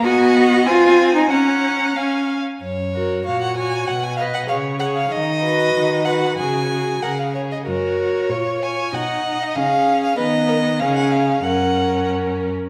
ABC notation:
X:1
M:2/4
L:1/16
Q:1/4=94
K:F#
V:1 name="Violin"
g2 f2 g4 | a4 g2 z2 | c4 e f g2 | f g e f e2 f e |
d6 f2 | g4 f e c d | c6 g2 | f3 d e3 e |
d4 e f e2 | f4 z4 |]
V:2 name="Violin"
d4 g4 | f4 e2 z2 | z2 A2 c2 c2 | z2 d2 c2 c2 |
z2 B4 B2 | G2 G2 G2 G2 | A4 c2 c2 | d4 G4 |
B2 A2 G4 | A6 z2 |]
V:3 name="Viola"
B,4 ^B,4 | C4 C2 z2 | z2 F2 F2 F2 | z2 B2 G2 G2 |
z2 F4 F2 | F2 F2 A2 G2 | F4 E4 | D4 C4 |
B,4 C4 | C6 z2 |]
V:4 name="Cello" clef=bass
F4 E3 D | C4 z4 | F,,4 A,,4 | B,,4 C,4 |
D,4 D,4 | C,4 C,4 | F,,4 A,,4 | B,,4 C,4 |
D,4 C,4 | F,,6 z2 |]